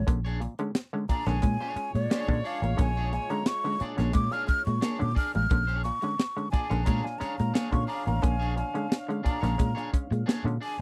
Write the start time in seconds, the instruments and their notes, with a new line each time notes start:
0.07 fingered electric bass A#1, clav D3 G#3 C#4, clean electric guitar A#3, muted clean electric guitar stroke, kick, closed hi-hat
0.25 clean electric guitar D4 G#4 C#5, closed hi-hat
0.40 clav A#2, muted clean electric guitar stroke, closed hi-hat
0.59 clav D3 G#3 C#4, clean electric guitar G#3, muted clean electric guitar stroke, closed hi-hat
0.75 muted clean electric guitar stroke, snare, closed hi-hat
0.93 clav D3 G#3 C#4, clean electric guitar G#3, muted clean electric guitar stroke
1.09 clav A#2, clean electric guitar D4 G#4 D5, flute A#5, muted fingered electric bass stroke, muted clean electric guitar stroke, kick, closed hi-hat
1.26 fingered electric bass A#1, clav D3 G#3 C#4, clean electric guitar A#3 D4 G#4 C#5, flute G#5, snare, closed hi-hat
1.42 fingered electric bass A#2, clav G#3 C#4, clean electric guitar G#3, horn section G#3 F4 C#5, muted clean electric guitar stroke, kick, closed hi-hat
1.60 clav A#2, clean electric guitar D4 G#4 C#5, muted clean electric guitar stroke
1.76 clav G#3 C#4, muted fingered electric bass stroke, muted clean electric guitar stroke, closed hi-hat
1.95 fingered electric bass A#2, clean electric guitar G#3, flute D5, muted clean electric guitar stroke, closed hi-hat
2.10 clean electric guitar A#3 D4 G#4 C#5, snare, closed hi-hat
2.28 fingered electric bass A#2, clav D3 G#3 C#4, muted clean electric guitar stroke, kick
2.44 clean electric guitar D4 G#4 D5, flute F5, open hi-hat
2.62 fingered electric bass A1, clav A#2, clean electric guitar A#3, muted clean electric guitar stroke, closed hi-hat
2.77 fingered electric bass A#1, clav D3 G#3 C#4, clean electric guitar A#3, flute G#5, muted clean electric guitar stroke, kick, closed hi-hat
2.97 clean electric guitar D4 G#4 C#5
3.13 clav A#2, flute G#5, muted clean electric guitar stroke, closed hi-hat
3.30 clav D3 G#3 C#4, clean electric guitar G#3, flute A#5, muted clean electric guitar stroke, closed hi-hat
3.46 flute C#6, muted clean electric guitar stroke, snare, closed hi-hat
3.64 clav D3 G#3 C#4, clean electric guitar G#3, muted clean electric guitar stroke, closed hi-hat
3.80 clav A#2, clean electric guitar D4 G#4 D5, muted fingered electric bass stroke, muted clean electric guitar stroke, closed hi-hat
3.97 fingered electric bass A#1, clav D3 G#3 C#4, clean electric guitar A#3 D4 G#4 C#5, snare, closed hi-hat
4.13 fingered electric bass A#2, clav G#3 C#4, clean electric guitar G#3, flute D6, muted clean electric guitar stroke, kick, closed hi-hat
4.32 clav A#2, clean electric guitar D4 G#4 C#5, flute F6, muted clean electric guitar stroke, closed hi-hat
4.47 clav G#3 C#4, flute F6, muted fingered electric bass stroke, kick, closed hi-hat
4.66 fingered electric bass A#2, clean electric guitar G#3, flute C#6, muted clean electric guitar stroke, closed hi-hat
4.81 clean electric guitar A#3 D4 G#4 C#5, snare, closed hi-hat
4.99 fingered electric bass A#2, clav D3 G#3 C#4, flute D6, muted clean electric guitar stroke, closed hi-hat
5.15 clean electric guitar D4 G#4 D5, flute F6, kick, open hi-hat
5.33 fingered electric bass A1, clav A#2, clean electric guitar G#3, flute F6, muted clean electric guitar stroke, closed hi-hat
5.49 fingered electric bass A#1, clav D3 G#3 C#4, clean electric guitar A#3, muted clean electric guitar stroke, kick, closed hi-hat
5.67 clean electric guitar D4 G#4 C#5, closed hi-hat
5.83 clav A#2, flute C#6, muted clean electric guitar stroke, closed hi-hat
6.01 clav D3 G#3 C#4, clean electric guitar G#3, muted clean electric guitar stroke, closed hi-hat
6.18 muted clean electric guitar stroke, snare, closed hi-hat
6.36 clav D3 G#3 C#4, clean electric guitar G#3, muted clean electric guitar stroke, closed hi-hat
6.51 clav A#2, clean electric guitar D4 G#4 D5, flute G#5, muted clean electric guitar stroke, muted fingered electric bass stroke, kick, closed hi-hat
6.69 fingered electric bass A#1, clav D3 G#3 C#4, clean electric guitar A#3 D4 G#4 C#5, closed hi-hat
6.84 fingered electric bass A#2, clav G#3 C#4, clean electric guitar G#3 D4 G#4 C#5, horn section D4 C#5 F5, flute A#5, kick, closed hi-hat
7.04 clav A#2, flute G#5, muted clean electric guitar stroke, snare
7.19 clav G#3 C#4, clean electric guitar D4 G#4 C#5, flute A#5, muted fingered electric bass stroke, closed hi-hat
7.37 fingered electric bass A#2, clean electric guitar G#3, flute A#5, muted clean electric guitar stroke, closed hi-hat
7.54 clean electric guitar A#3 D4 G#4 C#5, flute G#5, snare, closed hi-hat
7.71 fingered electric bass A#2, clav D3 G#3 C#4, flute C#6, muted clean electric guitar stroke, kick, closed hi-hat
7.87 clean electric guitar D4 G#4 D5, flute A#5, open hi-hat
8.06 fingered electric bass A1, clav A#2, clean electric guitar A#3, flute A#5, muted clean electric guitar stroke, closed hi-hat
8.22 fingered electric bass A#1, clav D3 G#3 C#4, clean electric guitar A#3, flute G#5, muted clean electric guitar stroke, kick, closed hi-hat
8.40 clean electric guitar D4 G#4 C#5, closed hi-hat
8.56 clav A#2, flute G#5, muted clean electric guitar stroke, closed hi-hat
8.74 clav D3 G#3 C#4, clean electric guitar G#3, muted clean electric guitar stroke, closed hi-hat
8.89 muted clean electric guitar stroke, snare, closed hi-hat
9.07 clav D3 G#3 C#4, clean electric guitar G#3, muted clean electric guitar stroke, closed hi-hat
9.23 clav A#2, clean electric guitar D4 G#4 D5, flute A#5, muted fingered electric bass stroke, muted clean electric guitar stroke, kick, closed hi-hat
9.41 fingered electric bass A#1, clav D3 G#3 C#4, clean electric guitar A#3 D4 G#4 C#5, snare, closed hi-hat
9.57 fingered electric bass A#2, clav G#3 C#4, clean electric guitar G#3, muted clean electric guitar stroke, kick, closed hi-hat
9.75 clav A#2, clean electric guitar D4 G#4 C#5, muted clean electric guitar stroke, closed hi-hat
9.93 clav G#3 C#4, muted fingered electric bass stroke, kick, closed hi-hat
10.11 fingered electric bass A#2, clean electric guitar G#3, muted clean electric guitar stroke, closed hi-hat
10.26 clean electric guitar A#3 D4 G#4 C#5, snare, closed hi-hat
10.44 fingered electric bass A#2, clav D3 G#3 C#4, muted clean electric guitar stroke, closed hi-hat
10.61 clean electric guitar D4 G#4 D5, flute G#5, open hi-hat